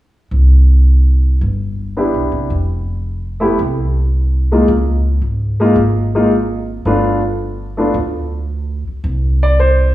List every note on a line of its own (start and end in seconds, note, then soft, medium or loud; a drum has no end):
0.31 1.37 C2 medium
1.41 2.10 G1 medium
1.97 2.51 B3 soft
1.97 2.51 D4 soft
1.97 2.51 E4 soft
1.97 2.52 G4 soft
2.14 2.31 B1 medium
2.32 2.49 C2 medium
2.50 3.55 F1 medium
3.40 3.57 A3 medium
3.40 3.57 B3 soft
3.40 3.57 E4 medium
3.40 3.58 G4 medium
3.59 4.64 C2 medium
4.52 4.67 G#3 medium
4.52 4.67 A#3 soft
4.52 4.67 D#4 soft
4.52 4.68 F4 medium
4.68 5.19 C#2 medium
5.22 5.73 G#2 medium
5.60 5.75 G#3 medium
5.60 5.76 A#3 medium
5.60 5.76 D#4 soft
5.60 5.76 F4 medium
5.76 6.81 G#1 medium
6.15 6.30 G#3 medium
6.15 6.30 A#3 medium
6.15 6.31 D#4 soft
6.15 6.31 F4 medium
6.85 7.91 G1 medium
6.85 7.20 A3 medium
6.85 7.20 B3 medium
6.85 7.21 D4 soft
6.85 7.20 F4 medium
7.77 7.93 A3 soft
7.77 7.94 B3 soft
7.77 7.94 D4 medium
7.77 7.94 F4 medium
7.94 8.83 D2 medium
8.87 muted upright bass stroke soft
9.04 9.95 C2 medium
9.43 9.59 D5 medium
9.60 9.95 C5 medium